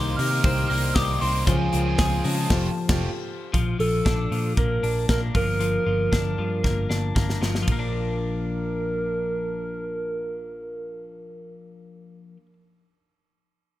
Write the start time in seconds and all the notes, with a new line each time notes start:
Already playing: C2 D#3 A#3 C4 D#4 G4 A#4 C5 C6
0.17 C3 A#3 D#4 G4 A#4 D#5 F6, hi-hat pedal, open hi-hat
0.31 A#3 D#4 A#4
0.44 C2 C4 D#4 G4 A#4 C5, kick, hi-hat pedal, open hi-hat
0.68 C2 G3 A#3 D#4 G4 A#4 D5 F6, hi-hat pedal, open hi-hat
0.94 C2 G3 A#3 D#4 G4 A#4 D#6, kick, snare, hi-hat pedal, open hi-hat
0.98 A#4
1.20 C2 G3 A#3 C4 D#4 G4 A#4 D5 C6, hi-hat pedal, open hi-hat
1.46 C#2 C#3 F3 C4 C#4 F4 G#4 C5 G#5, kick, hi-hat pedal, open hi-hat
1.72 C#2 C4 C#4 F4 G#4 A#4, hi-hat pedal, open hi-hat
1.86 C4 F4 G#4
1.98 C#2 C#4 F4 G#4 C#5, kick, snare, hi-hat pedal, open hi-hat
2.24 C#3 G#3 C#4 F4 G#4 C#5 A5, hi-hat pedal, open hi-hat
2.38 C4 F4 G#4
2.49 F1 F3 A3 C4 F4 G4 A4 C5, kick, snare, crash
2.88 F1 A3 C4 F4 G4 A4, kick, snare, crash
3.54 A#1 F3, kick, closed hi-hat
3.79 A#1 F3 A4, open hi-hat
4.05 A#1 D4, kick, snare, closed hi-hat
4.31 A#2 F3, open hi-hat
4.57 A#1 A#3 A#4, kick, closed hi-hat
4.83 A#1 D4, open hi-hat
5.09 A#1 A#3 A#4, kick, snare, closed hi-hat
5.35 G1 F3 A#4, kick, open hi-hat
5.60 F3, closed hi-hat
5.86 G1 F3
6.12 G1 D4, kick, snare, closed hi-hat
6.38 G2 F3
6.64 G1 A#3, kick, snare
6.89 G1 D4, snare
7.15 G1 A#3, kick, snare
7.30 snare
7.41 G1 F3, snare
7.55 snare
7.62 F3
7.68 A#1 A#4, kick, ride
7.72 A#3
7.79 D4